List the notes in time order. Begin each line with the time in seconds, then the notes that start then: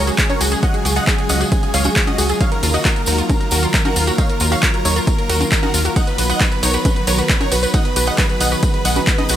Already playing: C#2 C#3 F#3 G#3 F#4
0.07 F#4 G#4, closed hi-hat, tambourine
0.18 C#3 F#3 G#3 F#4 G#4, kick, clap, closed hi-hat, tambourine
0.29 C#3 F#3 G#3 C#4 F#4 A#4 C#5, closed hi-hat, high conga
0.41 C#2 F#4 G#4, open hi-hat, tambourine
0.52 C#3 F#3 G#3 F#4 G#4, closed hi-hat, tambourine
0.63 C#3 F#3 G#3 C#4 F4 D#5 F#5, kick, closed hi-hat, tambourine
0.74 G#4, closed hi-hat
0.85 C#2 C#3 F#3 G#3 F4 F#4 G#4, open hi-hat, tambourine
0.96 G#4 D#5 F#5, closed hi-hat, tambourine
1.07 C#3 F#3 G#3 F4 F#4 G#4, kick, clap, closed hi-hat, tambourine
1.18 C#3 F#3 G#3 F4 G#4, closed hi-hat
1.29 C#2 C#4 D#5 F#5, open hi-hat, tambourine
1.41 C#3 F#3 G#3 F4 F#4 G#4, closed hi-hat, tambourine
1.52 C#3 F#3 G#3 F4 G#4, kick, closed hi-hat, tambourine
1.63 G#4, closed hi-hat
1.74 C#2 C#3 F#3 G#3 F4 G#4 C#5 F5, open hi-hat, tambourine
1.84 F#4 G#4, closed hi-hat, tambourine, high conga
1.96 C#3 F#3 G#3 F4 G#4, kick, clap, closed hi-hat, tambourine
2.07 C#3 F#3 G#3 C#4 F4 F#4 D#5, closed hi-hat, high conga
2.18 C#2 F#4 G#4, open hi-hat, tambourine
2.29 C#3 F#3 G#3 F4 G#4, closed hi-hat, tambourine
2.40 D#3 F#3 A#3 D#4 F4 C#5 F5, kick, closed hi-hat, tambourine
2.52 A#4, closed hi-hat
2.63 D#2 D#3 F#3 A#3 F4 A#4, open hi-hat, tambourine
2.74 F#4 D#5, closed hi-hat, tambourine
2.85 D#3 F#3 A#3 F4 A#4, kick, clap, closed hi-hat
2.96 D#3 F#3 A#3 F4 A#4, closed hi-hat
3.06 D#2 D#4 F#4 A#4, open hi-hat, tambourine
3.18 D#3 F#3 A#3 F4 A#4, closed hi-hat, tambourine
3.29 D#3 F#3 A#3 F4 A#4, kick, closed hi-hat, tambourine, high conga
3.41 A#4, closed hi-hat
3.51 D#2 D#3 F#3 A#3 F4 F#4 A#4, open hi-hat, tambourine
3.63 F4 A#4, closed hi-hat, tambourine
3.74 D#3 F#3 A#3 F4 A#4, kick, clap, closed hi-hat, tambourine
3.85 D#3 F#3 A#3 D#4 F4 F#4 A#4, closed hi-hat, high conga
3.96 D#2 F4 A#4, open hi-hat, tambourine
4.07 D#3 F#3 A#3 F4 F#4 A#4, closed hi-hat, tambourine
4.18 D#3 F#3 A#3 D#4 F4 C#5 F5, kick, closed hi-hat, tambourine
4.30 A#4, closed hi-hat
4.40 D#2 D#3 F#3 A#3 F4 A#4, open hi-hat, tambourine
4.52 F#4 C#5 F5, closed hi-hat, tambourine
4.63 D#3 F#3 A#3 F4 A#4, kick, clap, closed hi-hat, tambourine
4.74 D#3 F#3 A#3 F4 A#4, closed hi-hat
4.85 D#2 D#4 A#4 C#5, open hi-hat, tambourine
4.96 D#3 F#3 A#3 F4 A#4, closed hi-hat, tambourine
5.07 D#3 F#3 A#3 F4 A#4, kick, closed hi-hat, tambourine
5.18 A#4, closed hi-hat
5.29 D#2 D#3 F#3 A#3 F4 F#4 A#4, open hi-hat, tambourine
5.41 F4 A#4, closed hi-hat, tambourine, high conga
5.52 D#3 F#3 A#3 F4 A#4, kick, clap, closed hi-hat, tambourine
5.63 D#3 F#3 A#3 D#4 F4 F#4 A#4, closed hi-hat, high conga
5.74 D#2 F4 A#4, open hi-hat, tambourine
5.85 D#3 F#3 A#3 F4 F#4 A#4, closed hi-hat, tambourine
5.96 D#3 F#3 B3 D#4 F#4 D#5 F#5, kick, closed hi-hat, ride, tambourine
6.07 B4, closed hi-hat
6.18 B1 D#3 F#3 B3 F#4 B4, open hi-hat, ride, tambourine
6.29 B4 D#5 F#5, closed hi-hat, tambourine
6.40 D#3 F#3 B3 F#4 B4 D#5, kick, clap, closed hi-hat, ride, tambourine
6.52 D#3 F#3 B3 F#4 B4, closed hi-hat
6.63 B1 D#4 A#4 C#5, open hi-hat, ride, tambourine
6.73 D#3 F#3 B3 F#4 B4, closed hi-hat, tambourine
6.85 D#3 F#3 B3 F#4 B4, kick, closed hi-hat, ride, tambourine, high conga
6.96 B4, closed hi-hat
7.07 B1 D#3 F#3 B3 F#4 A#4 B4 C#5, open hi-hat, ride, tambourine
7.18 F#4 B4, closed hi-hat, tambourine
7.29 D#3 F#3 B3 F#4 B4, kick, clap, closed hi-hat, ride, tambourine
7.41 D#3 F#3 B3 D#4 F#4 A#4 C#5, closed hi-hat, high conga
7.52 B1 F#4 B4, open hi-hat, ride, tambourine
7.63 D#3 F#3 B3 F#4 B4, closed hi-hat, tambourine
7.74 D#3 F#3 B3 D#4 G#4 D#5 F#5, kick, closed hi-hat, ride, tambourine
7.85 B4, closed hi-hat
7.96 B1 D#3 F#3 B3 F#4 G#4 B4, open hi-hat, ride, tambourine
8.07 B4 D#5 F#5, closed hi-hat, tambourine
8.18 D#3 F#3 B3 G#4 B4 D#5, kick, clap, closed hi-hat, ride, tambourine
8.29 D#3 F#3 B3 G#4 B4, closed hi-hat
8.40 B1 D#4 D#5 F#5, open hi-hat, ride, tambourine
8.52 D#3 F#3 B3 F#4 G#4 B4, closed hi-hat, tambourine
8.63 D#3 F#3 B3 G#4 B4, kick, closed hi-hat, ride, tambourine
8.74 B4, closed hi-hat
8.85 B1 D#3 F#3 B3 G#4 B4 D#5 F#5, open hi-hat, ride, tambourine
8.96 F#4 B4, closed hi-hat, tambourine, high conga
9.07 D#3 F#3 B3 G#4 B4, kick, clap, closed hi-hat, ride, tambourine
9.18 D#3 F#3 B3 D#4 G#4 B4 D#5, closed hi-hat, high conga
9.29 B1 F#4 B4, open hi-hat, ride, tambourine